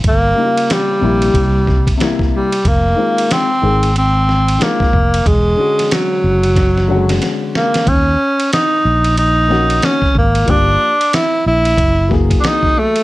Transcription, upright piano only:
X:1
M:4/4
L:1/8
Q:"Swing 16ths" 1/4=92
K:Ebdor
V:1 name="Upright piano"
z [D,=G,B,EF]2 [C,G,B,_F]3 [C,G,B,=E] z | z [E,A,CF] z [E,A,CA] z2 [E,A,CF] z | z [=D,^G,^C^F]3 z [D,^F,G,CF]3 | z4 z [E,B,DG] z2 |
[F,B,=D=G] z4 [_F,_G,B,A]3 |]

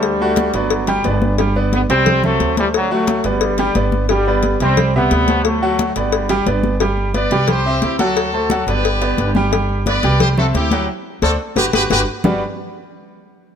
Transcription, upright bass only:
X:1
M:4/4
L:1/8
Q:1/4=177
K:G
V:1 name="Upright bass" clef=bass
D,,3 G,,,3 G,,,2- | G,,,3 C,,3 D,,2- | D,,3 G,,,3 G,,,2- | G,,,3 C,,3 D,,2- |
D,,3 G,,,3 G,,,2- | G,,,3 C,,3 D,,2- | D,,3 G,,,3 G,,,2- | G,,,3 C,,3 D,,2 |
z2 D,, z G,,, G,,, G,,, z | G,,, z6 z |]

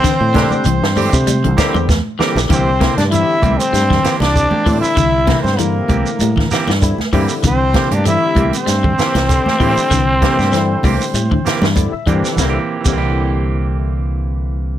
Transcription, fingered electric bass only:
X:1
M:4/4
L:1/16
Q:"Swing 16ths" 1/4=97
K:Cmix
V:1 name="Fingered electric bass" clef=bass
z A,,2 z C,, G,,2 C,2 C,, z E,,2 z2 B,,, | C,,3 G,,2 z C,, z G,,2 z C,,2 z A,, z | C,,3 G,,3 C,, z A,,2 z G,,2 z G,, z | C,,3 G,,2 z C,, z G,,2 z C,,2 z A,, z |
C,,3 G,,3 C,, z A,,2 z G,,2 z G,, z | C,, z2 C,,12- C,, |]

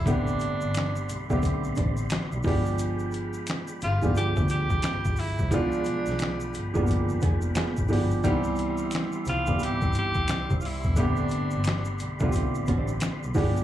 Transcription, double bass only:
X:1
M:4/4
L:1/16
Q:"Swing 16ths" 1/4=88
K:Am
V:1 name="Double bass" clef=bass
A,,,2 G,,, G,,,3 B,,, B,,, z A,,, A,,,2 z B,,, G,,,2- | G,,,3 z3 G,,, G,, D,, D,,2 z G,,, G,,, z C,,- | C,, z B,,, B,,,3 G,,, G,,, z F,,, F,,,2 z _A,,, G,,,2 | C,,3 z3 C,, C, G,,, G,,,2 z C,, C,, z E,,, |
A,,,2 G,,, G,,,3 B,,, B,,, z A,,, A,,,2 z B,,, G,,,2 |]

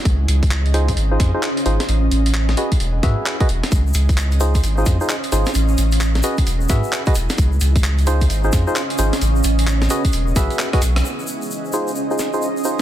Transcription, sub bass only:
X:1
M:4/4
L:1/8
Q:"Swing 16ths" 1/4=131
K:Db
V:1 name="Sub bass" clef=bass
D,, D,,3 A,,, F,, z A,,, | =A,,, A,,,2 z =E,,, ^G,, z E,,, | D,, D,,3 A,,, F,, z A,,, | =A,,, A,,,2 z =E,,, ^G,, z E,,, |
D,, D,,3 A,,, F,, z A,,, | =A,,, A,,,2 z =E,,, =B,,, z B,,, | z8 |]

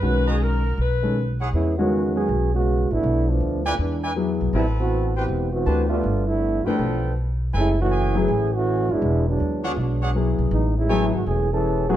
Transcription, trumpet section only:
X:1
M:4/4
L:1/8
Q:"Swing" 1/4=160
K:B
V:1 name="Trumpet section"
z [FBda] z4 z [EGcf] | [K:E] z8 | z3 [EB=dg] z [EBdg] z2 | [=CABa]3 [=GB=c=g] z2 [GBca] z |
z3 [=FAB=g]3 z2 | [EABg] z [EGBg]3 z3 | z3 [=DGcf] z [DGcf] z2 | z2 [EAcg] z4 z |]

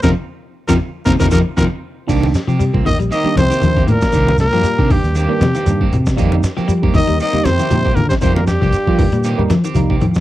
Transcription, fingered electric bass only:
X:1
M:4/4
L:1/16
Q:"Swing 16ths" 1/4=117
K:Cm
V:1 name="Fingered electric bass" clef=bass
F,, z4 F,, z2 F,, F,, F,, z F,, z3 | C,,2 z C,2 C,, z B,,, z2 C,, z E,,2 =A,, z | C,,3 G,, z C, z E,,2 z C, z G,,2 C,2 | F,,2 z F,2 F,, z E,, z2 F,, z B,,2 D, z |
F,,3 C,, z F, z B,,2 z F, z C,,2 F,2 |]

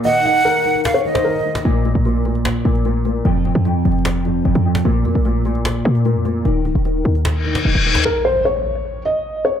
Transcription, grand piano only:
X:1
M:4/4
L:1/8
Q:1/4=150
K:Bbm
V:1 name="Grand piano" clef=bass
E, E, E, E,2 E, E, E, | B,, B,, B,, B,,2 B,, B,, B,, | F,, F,, F,, F,,2 F,, F,, F,, | B,, B,, B,, B,,2 B,, B,, B,, |
E, E, E, E,2 E, E, E, | z8 |]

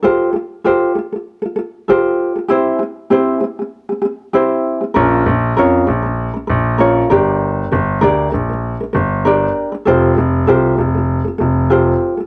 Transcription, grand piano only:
X:1
M:4/4
L:1/16
Q:"Swing 16ths" 1/4=98
K:F
V:1 name="Grand piano" clef=bass
z16 | z16 | B,,,2 B,,,2 F,,2 B,,,3 z B,,,4 G,,,2- | G,,,2 G,,,2 D,,2 B,,,3 z G,,,4 z2 |
F,,,2 F,,,2 C,,2 F,,,3 z F,,,4 z2 |]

